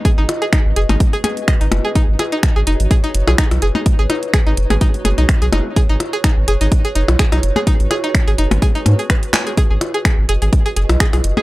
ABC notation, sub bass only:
X:1
M:4/4
L:1/16
Q:"Swing 16ths" 1/4=126
K:G#m
V:1 name="Sub bass" clef=bass
z G,,, z3 G,,, F,,, G,,, z4 z G,,, F,,, z | z G,,, z3 G,,, F,,, G,,, z2 F,,, B,,, z B,,, F,,, z | z G,,, z3 G,,, F,,, G,,, z2 F,,, B,,, z B,,, F,,, z | z G,,, z3 G,,, F,,, G,,, z2 F,,, B,,, z B,,, F,,, z |
z G,,, z3 G,,, F,,, G,,, z2 G,, z4 z | z G,,, z3 G,,, F,,, G,,, z2 F,,, B,,, z B,,, F,,, z |]